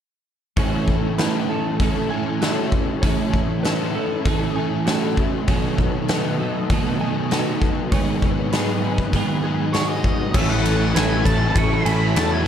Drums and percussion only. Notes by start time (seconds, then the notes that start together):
0.57 kick, open hi-hat
0.88 kick
1.18 snare, open hi-hat
1.80 kick, open hi-hat
2.42 snare, open hi-hat
2.72 kick
3.03 kick, open hi-hat
3.33 kick
3.64 snare, open hi-hat
4.25 kick, open hi-hat
4.87 snare, open hi-hat
5.17 kick
5.47 kick, open hi-hat
5.78 kick
6.08 snare, open hi-hat
6.70 kick, open hi-hat
7.31 snare, open hi-hat
7.62 kick
7.92 kick, open hi-hat
8.22 kick
8.52 snare, open hi-hat
8.98 kick
9.13 kick, open hi-hat
9.74 snare, open hi-hat
10.04 kick
10.34 kick, crash
10.65 ride
10.96 snare, ride
11.26 kick, ride
11.56 kick, ride
11.86 ride
12.16 snare, ride